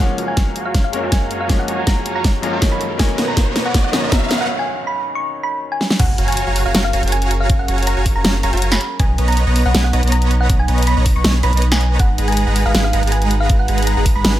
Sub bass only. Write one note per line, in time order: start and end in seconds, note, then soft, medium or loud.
6.00 6.17 F#1 loud
6.18 6.45 F#1 loud
6.47 6.64 F#1 loud
6.66 6.73 F#1 loud
6.75 6.92 F#1 loud
6.93 7.01 F#1 loud
7.03 7.48 F#1 medium
7.50 7.67 F#1 loud
7.68 7.95 F#1 medium
7.97 8.14 F#1 loud
8.16 8.23 F#1 loud
8.25 8.42 F#1 loud
8.43 8.51 F#1 loud
8.53 8.78 F#1 loud
9.00 9.17 B1 loud
9.18 9.45 B1 loud
9.47 9.64 B1 loud
9.65 9.73 B1 loud
9.74 9.91 B1 medium
9.93 10.01 B1 loud
10.03 10.48 B1 loud
10.50 10.67 B1 loud
10.68 10.95 B1 loud
10.97 11.14 B1 loud
11.15 11.23 B1 loud
11.24 11.41 B1 loud
11.43 11.51 B1 loud
11.53 11.98 B1 loud
12.00 12.17 G#1 loud
12.18 12.45 G#1 medium
12.47 12.64 G#1 loud
12.66 12.73 G#1 medium
12.75 12.92 G#1 loud
12.93 13.01 G#1 loud
13.03 13.48 G#1 loud
13.50 13.67 G#1 loud
13.68 13.95 G#1 loud
13.97 14.14 G#1 loud
14.16 14.23 G#1 loud
14.25 14.40 G#1 loud